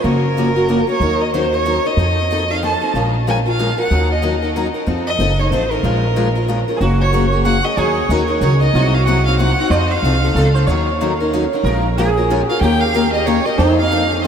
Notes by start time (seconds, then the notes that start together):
0.04 F#1 C#3 F3 A#3 C#4 F#4 A#4
0.37 C#3 F3 A#3 C#4 F#4
0.56 A#3 C#4 F#4
0.68 C#3 F3 A#3 C#4 F#4
0.87 A#3 C#4 F#4 C#5
1.00 D#2 D#3 F#3 C#4 D#4 A#4
1.21 D#5
1.34 D#3 F#3 C#4 D#4 A#4 C5
1.53 C#4 D#4 A#4 C#5
1.65 D#3 F#3 C#4 D#4 A#4
1.85 C#4 D#4 A#4 D#5
1.97 F2 F3 C4 D#4 A4
2.31 F3 C4 D#4 A4
2.50 C4 D#4 A4 F5
2.63 F3 C4 D#4 A4 A5
2.81 C4 D#4 A4
2.94 A#1 F3 G#3 C#4 F4 A#4
3.27 F3 G#3 C#4 F4 A#4 G#5
3.46 C#4 F4 A#4 F5
3.59 F3 G#3 C#4 F4 A#4
3.78 C#4 F4 A#4 F#5
3.91 D#2 D#3 F#3 C#4 D#4 A#4
4.12 D#5
4.22 D#3 F#3 C#4 D#4 A#4
4.42 C#4 D#4 A#4
4.56 D#3 F#3 C#4 D#4 A#4
4.74 C#4 D#4 A#4
4.86 F2 F3 C4 D#4 A4
5.07 D#5
5.19 F#1 F3 C4 D#4 A4
5.39 C4 D#4 A4 C#5
5.51 A1 F3 C4 D#4 A4 C5
5.71 C4 D#4 A4 A#4
5.83 A#1 F3 G#3 C#4 F4 A#4
6.16 F3 G#3 C#4 F4 A#4
6.35 C#4 F4 A#4
6.48 F3 G#3 C#4 F4 A#4
6.68 C#4 F4 A#4
6.77 G#4
6.81 F#1 F#3 A#3 C#4 F#4 G#4
7.02 C#5
7.13 F#3 A#3 C#4 G#4
7.32 A#3 C#4 G#4
7.45 F#3 A#3 C#4 G#4 F#5
7.64 A#3 C#4 G#4 D#5
7.77 D#2 D#3 F#3 C#4 D#4 G#4 A#4 C#5
8.09 D#2 D#3 F#3 C#4 D#4 A#4
8.28 C#4 D#4 A#4
8.41 C#2 D#3 F#3 C#4 D#4 A#4 C#5
8.61 C#4 D#4 A#4 D#5
8.74 C2 C3 F#3 C4 D#4 F#4
8.94 F5
9.07 C3 F#3 C4 D#4 F#5
9.26 F#3 C4 D#4 F5
9.39 C3 F#3 C4 D#4 F4 F#5
9.60 F#3 C4 D#4
9.70 F2 F3 C4 D#4 A4 C5 D#5
9.91 F5
10.03 C2 F3 C4 D#4 A4
10.24 C4 D#4 A4
10.35 C#2 F3 C4 D#4 A4
10.54 C4 D#4 A4 C5
10.67 D#2 D#3 F#3 C#4 D#4 C#5
10.71 A#4
11.01 D#3 F#3 C#4 D#4 A#4
11.20 C#4 D#4 A#4
11.33 D#3 F#3 C#4 D#4 A#4
11.53 C#4 D#4 A#4
11.64 A#1 F3 G#3 C#4 F4 A#4
11.97 F3 G#3 C#4 F4 G#4 A#4
12.17 C#4 F4 A#4
12.30 F3 G#3 C#4 F4 A#4
12.47 F4 F#4 A#4 F5
12.52 C#4
12.61 D#2 D#3 A#3 C#4 G4 A#4 G5
12.81 F5
12.94 D#3 A#3 C#4 G4 A#4
13.13 C#4 G4 A#4 D#5
13.26 D#3 A#3 C#4 G4 A#4 C#5
13.45 C#4 G4 A#4 D#5
13.58 F2 F3 C4 D#4 A4 C5
13.79 F5
13.91 F3 C4 D#4 A4
14.09 C4 C#4 D#4 A4
14.23 F3 C4